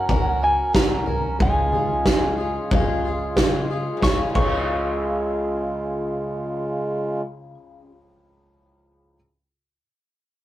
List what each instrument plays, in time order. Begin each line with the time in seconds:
Already playing: upright piano F#1 F#2 F#3 A#3 C#4 A#4 C#5, harmonium F#3 C#4 A#4, clean electric guitar F#5
0.09 upright bass C#2, steel-string acoustic guitar F#3 C#4 F#4 A#4, kick, floor tom
0.41 steel-string acoustic guitar C#4 F#4 A#4, clean electric guitar G#5
0.73 upright bass C2, steel-string acoustic guitar F#3 C#4 F#4 A#4, clean electric guitar A#5, kick, snare
1.06 steel-string acoustic guitar C#4 F#4 A#4, floor tom
1.39 upright piano C#2 C#3 F3 G#3 C#4 G#4 C#5, upright bass C#2, harmonium C#3 G#3 F4, steel-string acoustic guitar C#3 G#3 C#4 F4 G#4, clean electric guitar G#5, kick, floor tom
1.72 steel-string acoustic guitar C#4 F4 G#4, floor tom
2.05 upright bass C#2, steel-string acoustic guitar G#3 C#4 F4 G#4, kick, snare
2.38 steel-string acoustic guitar C#4 F4 G#4
2.71 upright bass G#1, steel-string acoustic guitar C#3 G#3 C#4 F4 G#4, kick, floor tom
3.05 steel-string acoustic guitar C#4 F4 G#4
3.36 upright bass C#3, steel-string acoustic guitar G#3 C#4 F4 G#4, kick, snare
3.70 steel-string acoustic guitar C#4 F4 G#4
3.97 steel-string acoustic guitar C#3, upright piano F3 C#4
4.02 upright piano C#2 G#4 C#5, upright bass C#2, harmonium C#3 G#3 F4, steel-string acoustic guitar G#3, clean electric guitar C#6, kick, snare
4.08 steel-string acoustic guitar C#4
4.12 steel-string acoustic guitar F4
4.17 steel-string acoustic guitar G#4
4.30 steel-string acoustic guitar C#3, upright piano F3
4.35 upright piano C#2 C#4 G#4 C#5, upright bass C#2, steel-string acoustic guitar G#3, clean electric guitar C#6, kick, crash
4.41 steel-string acoustic guitar C#4
4.46 steel-string acoustic guitar F4 G#4